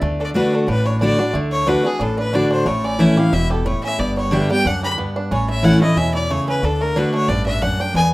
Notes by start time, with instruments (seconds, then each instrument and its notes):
Already playing: resonator guitar played with a steel bar D5
0.01 upright bass D2, steel-string acoustic guitar D3, five-string banjo A3
0.20 five-string banjo D4, fiddle A4
0.24 fiddle D5
0.34 steel-string acoustic guitar D3 A3 D4 F#4, five-string banjo D4, fiddle B4
0.53 five-string banjo D4, fiddle A4
0.68 upright bass A1, steel-string acoustic guitar A2, five-string banjo D4, fiddle B4
0.86 five-string banjo D4, fiddle C#5
1.01 steel-string acoustic guitar D3 A3 D4 F#4, five-string banjo D4, fiddle D5
1.19 five-string banjo D4, steel-string acoustic guitar D4 F#4
1.34 upright bass D2, steel-string acoustic guitar D3, five-string banjo A3
1.52 fiddle C#5
1.66 steel-string acoustic guitar D3 A3 D4 F#4, five-string banjo D4, fiddle B4
1.84 five-string banjo D4, steel-string acoustic guitar D4 F#4, fiddle G#4
1.99 upright bass A1, steel-string acoustic guitar A2, five-string banjo D4, fiddle A4
2.18 five-string banjo D4, fiddle B4
2.33 steel-string acoustic guitar D3 A3 D4 F#4, five-string banjo D4, fiddle D5
2.51 five-string banjo D4, fiddle C5
2.66 upright bass A1, steel-string acoustic guitar A2, five-string banjo A3, fiddle C#5
2.84 five-string banjo C#4, fiddle D5
2.99 steel-string acoustic guitar E3 A3 C#4 E4, five-string banjo E4, fiddle E5
3.17 steel-string acoustic guitar C#4 E4, five-string banjo G4, fiddle F5
3.33 upright bass E1, steel-string acoustic guitar B2, five-string banjo E4, fiddle E5
3.51 five-string banjo G4, fiddle A4
3.66 steel-string acoustic guitar A2, five-string banjo E4, fiddle C#5
3.83 five-string banjo C#4, fiddle E5
3.99 upright bass G1, steel-string acoustic guitar G2, five-string banjo B3, fiddle D5
4.17 five-string banjo G3, fiddle C#5
4.31 steel-string acoustic guitar D3 G3 B3 G4, five-string banjo D4, fiddle E5
4.50 five-string banjo G3, steel-string acoustic guitar B3 G4, fiddle G5
4.65 upright bass D2, steel-string acoustic guitar F#2, five-string banjo D4, fiddle F#5
4.83 five-string banjo G4, fiddle B5
4.98 steel-string acoustic guitar G2, five-string banjo B3
5.16 five-string banjo D4
5.31 upright bass A1, steel-string acoustic guitar A2, five-string banjo C#4, fiddle C#5
5.48 five-string banjo A3, fiddle E5
5.63 steel-string acoustic guitar E3 A3 C#4 E4, five-string banjo E4, fiddle F#5
5.82 five-string banjo A3, steel-string acoustic guitar C#4 E4, fiddle D#5
5.96 upright bass E2, steel-string acoustic guitar B2, five-string banjo C#4, fiddle E5
6.14 five-string banjo E4, fiddle D5
6.30 steel-string acoustic guitar C#3, five-string banjo A3, fiddle C#5
6.48 five-string banjo C#4, fiddle B4
6.63 upright bass D2, steel-string acoustic guitar D3, five-string banjo D4, fiddle A4
6.81 five-string banjo A3, fiddle A#4
6.96 steel-string acoustic guitar D3 A3 D4 F#4, five-string banjo D4, fiddle B4
7.14 five-string banjo A3, fiddle C#5
7.28 upright bass A1, steel-string acoustic guitar G2, five-string banjo D4, fiddle D5
7.46 five-string banjo D4, fiddle E5
7.62 steel-string acoustic guitar F#2, five-string banjo D4, fiddle F#5
7.80 five-string banjo D4, fiddle G5
7.94 upright bass E2, steel-string acoustic guitar E2, five-string banjo B3, fiddle G#5